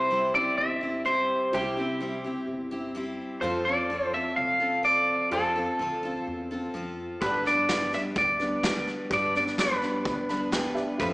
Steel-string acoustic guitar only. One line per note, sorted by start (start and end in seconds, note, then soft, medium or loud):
0.00 0.10 C4 soft
0.00 0.11 E4 soft
0.11 0.34 G3 medium
0.11 0.35 C4 medium
0.11 0.35 E4 medium
0.11 0.33 G4 medium
0.34 0.84 C4 soft
0.34 0.82 E4 soft
0.34 0.80 G4 soft
0.81 1.04 C4 soft
0.81 1.05 E4 soft
0.81 1.05 G4 medium
1.05 1.52 G3 medium
1.05 1.54 C4 medium
1.05 1.53 E4 medium
1.05 1.54 G4 medium
1.53 1.77 C3 medium
1.53 1.77 G3 medium
1.53 1.77 C4 medium
1.53 1.77 E4 medium
1.53 1.76 G4 medium
1.77 2.00 C4 soft
1.77 2.01 E4 soft
1.77 2.00 G4 medium
2.00 2.24 G3 medium
2.00 2.25 C4 medium
2.00 2.25 E4 medium
2.00 2.23 G4 medium
2.24 2.73 C4 soft
2.24 2.71 E4 soft
2.24 2.70 G4 medium
2.71 2.95 C4 soft
2.71 2.95 E4 medium
2.71 2.95 G4 medium
2.95 3.42 G3 medium
2.95 3.42 C4 medium
2.95 3.43 E4 medium
2.95 3.44 G4 medium
3.42 3.66 F3 medium
3.42 3.66 C4 medium
3.42 3.66 F4 medium
3.42 3.65 A4 medium
3.66 3.89 C4 soft
3.66 3.91 F4 soft
3.66 3.90 A4 soft
3.90 4.13 F3 medium
3.90 4.14 C4 medium
3.90 4.13 F4 medium
3.90 4.12 A4 medium
4.13 4.62 C4 soft
4.13 4.61 F4 soft
4.13 4.59 A4 soft
4.60 4.83 C4 soft
4.60 4.84 F4 soft
4.60 4.84 A4 medium
4.83 5.30 F3 medium
4.83 5.31 C4 medium
4.83 5.32 F4 medium
4.83 5.32 A4 medium
5.31 5.55 F3 medium
5.31 5.56 C4 medium
5.31 5.56 F4 medium
5.31 5.54 A4 medium
5.56 5.79 C4 soft
5.56 5.80 F4 medium
5.56 5.79 A4 medium
5.79 6.03 F3 medium
5.79 6.04 C4 medium
5.79 6.04 F4 medium
5.79 6.02 A4 medium
6.03 6.52 C4 soft
6.03 6.51 F4 medium
6.03 6.50 A4 medium
6.51 6.74 C4 soft
6.51 6.75 F4 medium
6.51 6.74 A4 medium
6.74 7.21 F3 medium
6.74 7.22 C4 medium
6.74 7.22 F4 medium
6.74 7.23 A4 medium
7.21 7.45 G2 medium
7.21 7.45 D3 medium
7.21 7.45 G3 medium
7.21 7.46 B3 medium
7.21 7.45 D4 medium
7.21 7.44 B4 medium
7.45 7.68 G3 soft
7.45 7.70 B3 soft
7.45 7.69 D4 soft
7.45 7.69 B4 medium
7.70 7.93 G3 medium
7.70 7.93 B3 medium
7.70 7.92 D4 medium
7.70 7.91 B4 medium
7.93 8.41 G3 soft
7.93 8.41 B3 soft
7.93 8.39 D4 soft
7.93 8.38 B4 soft
8.40 8.62 G3 soft
8.40 8.63 B3 soft
8.40 8.64 D4 soft
8.40 8.63 B4 medium
8.63 9.10 G3 medium
8.63 9.11 B3 medium
8.63 9.12 D4 medium
8.63 9.12 B4 medium
9.11 9.34 G2 medium
9.11 9.35 D3 medium
9.11 9.35 G3 medium
9.11 9.35 B3 medium
9.11 9.35 D4 medium
9.11 9.34 B4 medium
9.35 9.58 G3 soft
9.35 9.58 B3 soft
9.35 9.59 D4 medium
9.35 9.58 B4 medium
9.59 9.82 G3 medium
9.59 9.82 B3 medium
9.59 9.81 D4 medium
9.59 9.80 B4 medium
9.82 10.30 G3 soft
9.82 10.30 B3 soft
9.82 10.29 D4 soft
9.82 10.28 B4 medium
10.29 10.50 G3 soft
10.29 10.52 B3 medium
10.29 10.53 D4 medium
10.29 10.52 B4 medium
10.52 10.99 G3 medium
10.52 11.00 B3 medium
10.52 11.00 D4 medium
10.52 11.01 B4 medium
11.00 11.13 F3 medium
11.00 11.13 C4 medium
11.00 11.13 F4 medium
11.00 11.13 A4 medium